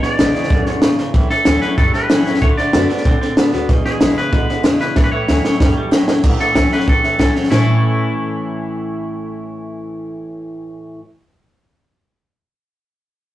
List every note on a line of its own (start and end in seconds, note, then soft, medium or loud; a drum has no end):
0.00 0.47 E2 loud
0.00 0.17 E2 medium
0.00 0.17 B2 medium
0.00 0.65 D5 loud
0.00 muted upright bass stroke medium
0.00 snare soft
0.18 0.30 A1 medium
0.18 0.33 E2 medium
0.18 0.33 C#3 medium
0.18 0.49 D3 medium
0.18 0.49 G#3 medium
0.18 0.50 B3 loud
0.18 0.50 E4 medium
0.18 snare loud
0.18 hi-hat pedal medium
0.35 0.49 E2 medium
0.35 0.50 C#3 medium
0.35 muted upright bass stroke medium
0.35 snare soft
0.43 snare soft
0.50 0.62 C#2 medium
0.50 0.65 E2 medium
0.50 0.81 F#2 loud
0.50 0.66 D3 medium
0.50 kick loud
0.50 snare soft
0.65 0.81 E2 medium
0.65 0.81 D3 medium
0.65 0.95 C#5 loud
0.65 snare soft
0.82 0.97 E2 medium
0.82 0.94 E2 medium
0.82 1.13 G#2 medium
0.82 0.97 C#3 loud
0.82 snare loud
0.82 hi-hat pedal medium
0.98 1.10 G#1 medium
0.98 1.13 E2 medium
0.98 1.13 C#3 medium
0.98 snare soft
1.14 1.25 A1 loud
1.14 1.29 A2 medium
1.14 1.75 A2 medium
1.14 1.29 E3 medium
1.14 kick loud
1.14 snare soft
1.30 1.45 A2 medium
1.30 1.45 E3 medium
1.30 1.61 A4 medium
1.30 snare soft
1.45 1.57 D2 loud
1.45 1.60 A2 medium
1.45 1.61 E3 medium
1.45 1.61 F#3 loud
1.45 1.62 A3 medium
1.45 1.62 C#4 medium
1.45 1.62 E4 loud
1.45 snare loud
1.45 hi-hat pedal medium
1.62 1.77 A2 medium
1.62 1.77 F#3 medium
1.62 1.79 C#4 medium
1.62 1.78 E4 medium
1.62 1.77 B4 medium
1.62 snare soft
1.77 2.39 E2 loud
1.77 1.89 F#2 medium
1.77 1.92 A2 medium
1.77 1.93 G3 medium
1.77 1.93 A4 medium
1.77 kick loud
1.77 snare soft
1.94 2.09 A2 medium
1.94 2.09 G3 medium
1.94 2.38 B4 medium
1.94 snare soft
2.10 2.21 A2 medium
2.10 2.24 A2 loud
2.10 2.25 E3 medium
2.10 2.25 F#3 loud
2.10 2.26 A3 medium
2.10 2.26 C#4 medium
2.10 2.24 E4 medium
2.10 snare loud
2.10 hi-hat pedal medium
2.25 2.37 F#2 medium
2.25 2.41 A2 medium
2.25 2.41 F#3 medium
2.25 2.42 C#4 medium
2.25 2.41 E4 medium
2.25 snare soft
2.34 snare soft
2.42 2.53 D2 loud
2.42 2.72 D3 loud
2.42 2.57 D3 medium
2.42 2.57 A3 medium
2.42 2.47 C#5 loud
2.42 kick loud
2.42 snare soft
2.57 2.72 D3 medium
2.57 2.73 A3 medium
2.57 3.53 D5 loud
2.57 muted upright bass stroke medium
2.57 snare soft
2.73 2.85 F#2 loud
2.73 2.89 D3 medium
2.73 2.88 D3 medium
2.73 2.89 A3 medium
2.73 2.88 B3 medium
2.73 2.90 D4 medium
2.73 2.89 F#4 medium
2.73 snare loud
2.73 hi-hat pedal medium
2.89 3.04 D3 medium
2.89 3.04 B3 medium
2.89 3.06 D4 soft
2.89 3.05 F#4 medium
2.89 muted upright bass stroke medium
2.89 snare soft
2.97 snare soft
3.05 3.66 A2 loud
3.05 3.16 B2 medium
3.05 3.20 D3 medium
3.05 3.20 C4 loud
3.05 kick loud
3.05 snare soft
3.21 3.36 D3 medium
3.21 3.36 C4 medium
3.21 snare soft
3.37 3.52 D3 medium
3.37 3.48 D3 medium
3.37 3.53 D3 medium
3.37 3.53 A3 medium
3.37 3.52 B3 medium
3.37 3.53 D4 medium
3.37 3.52 F#4 medium
3.37 snare loud
3.37 hi-hat pedal medium
3.53 3.64 D2 medium
3.53 3.68 D3 medium
3.53 3.68 B3 medium
3.53 3.69 D4 medium
3.53 3.68 F#4 medium
3.53 snare soft
3.69 3.80 E1 medium
3.69 3.84 E2 medium
3.69 4.30 E2 loud
3.69 3.84 B2 medium
3.69 kick loud
3.69 snare soft
3.85 3.99 E2 medium
3.85 4.00 B2 medium
3.85 4.18 G#4 medium
3.85 muted upright bass stroke medium
3.85 snare soft
4.00 4.12 A1 medium
4.00 4.15 E2 medium
4.00 4.16 C#3 medium
4.00 4.16 D3 medium
4.00 4.17 G#3 loud
4.00 4.17 B3 medium
4.00 4.15 E4 loud
4.00 snare loud
4.00 hi-hat pedal medium
4.16 4.31 E2 medium
4.16 4.31 C#3 medium
4.16 4.33 B3 medium
4.16 4.32 E4 medium
4.16 4.62 B4 loud
4.16 muted upright bass stroke medium
4.16 snare soft
4.32 4.44 C#2 medium
4.32 4.47 E2 medium
4.32 4.93 B2 medium
4.32 4.47 D3 medium
4.32 kick loud
4.32 snare soft
4.49 4.63 E2 medium
4.49 4.63 D3 medium
4.49 snare soft
4.63 4.76 E2 loud
4.63 4.79 E2 medium
4.63 4.80 C#3 loud
4.63 4.79 D3 medium
4.63 4.80 G#3 medium
4.63 4.80 B3 loud
4.63 4.79 E4 loud
4.63 snare loud
4.63 hi-hat pedal medium
4.80 4.92 B1 loud
4.80 4.95 E2 medium
4.80 4.95 C#3 medium
4.80 4.97 B3 medium
4.80 4.96 E4 medium
4.80 4.97 B4 loud
4.80 snare soft
4.96 5.07 A1 medium
4.96 5.11 A2 medium
4.96 5.57 A2 loud
4.96 5.11 E3 loud
4.96 5.03 C#5 loud
4.96 kick loud
4.96 snare medium
5.04 5.11 B4 medium
5.12 5.27 A2 medium
5.12 5.27 E3 medium
5.12 5.89 C#5 loud
5.28 5.40 D2 medium
5.28 5.43 A2 medium
5.28 5.44 E3 medium
5.28 5.43 F#3 medium
5.28 5.44 A3 medium
5.28 5.44 C#4 medium
5.28 5.43 E4 loud
5.28 snare medium
5.28 hi-hat pedal medium
5.44 5.59 A2 medium
5.44 5.59 F#3 medium
5.44 5.60 C#4 soft
5.44 5.59 E4 medium
5.44 snare medium
5.60 6.21 E2 medium
5.60 5.71 F#2 medium
5.60 5.75 A2 medium
5.60 5.75 G3 medium
5.60 kick loud
5.60 snare medium
5.77 5.91 A2 medium
5.77 5.91 G3 medium
5.91 6.03 A2 medium
5.91 6.07 A2 medium
5.91 6.07 E3 medium
5.91 6.07 F#3 medium
5.91 6.07 A3 medium
5.91 6.08 C#4 medium
5.91 6.07 E4 loud
5.91 snare loud
5.91 hi-hat pedal medium
6.07 6.19 F#2 medium
6.07 6.22 A2 medium
6.07 6.22 F#3 medium
6.07 6.24 C#4 soft
6.07 6.23 E4 medium
6.07 snare loud
6.24 6.36 A1 loud
6.24 6.38 A2 medium
6.24 6.84 A2 medium
6.24 6.39 E3 medium
6.24 kick loud
6.24 snare soft
6.24 crash loud
6.40 6.54 A2 medium
6.40 6.54 E3 medium
6.40 6.73 A4 medium
6.40 snare soft
6.55 6.67 C#2 loud
6.55 6.70 A2 medium
6.55 6.71 E3 medium
6.55 6.70 F#3 medium
6.55 6.71 A3 medium
6.55 6.71 C#4 medium
6.55 6.70 E4 loud
6.55 kick medium
6.55 snare loud
6.55 hi-hat pedal medium
6.71 6.86 A2 medium
6.71 6.86 F#3 medium
6.71 6.88 C#4 medium
6.71 6.87 E4 medium
6.71 6.89 B4 loud
6.71 snare soft
6.80 snare soft
6.87 6.99 A1 medium
6.87 7.48 E2 medium
6.87 7.02 A2 medium
6.87 7.02 E3 medium
6.87 7.33 A4 medium
6.87 kick loud
6.87 snare soft
7.04 7.18 A2 medium
7.04 7.18 E3 medium
7.04 snare soft
7.19 7.31 C#2 medium
7.19 7.33 A2 medium
7.19 7.34 E3 medium
7.19 7.34 F#3 loud
7.19 7.35 A3 medium
7.19 7.35 C#4 medium
7.19 7.33 E4 loud
7.19 kick medium
7.19 snare loud
7.19 hi-hat pedal medium
7.35 7.49 A2 medium
7.35 7.50 F#3 medium
7.35 7.51 C#4 medium
7.35 7.50 E4 medium
7.35 snare soft
7.44 snare soft
7.49 10.73 A1 loud
7.49 10.99 A2 medium
7.49 11.00 A2 medium
7.49 11.00 E3 medium
7.49 11.01 E3 medium
7.49 11.01 A3 medium
7.49 11.02 A3 medium
7.49 11.02 C#4 loud
7.49 11.03 C#4 medium
7.49 10.73 E4 medium
7.49 11.02 E4 loud
7.49 snare loud
7.49 floor tom loud
7.49 splash medium
7.54 11.04 E4 loud
7.54 11.04 A4 loud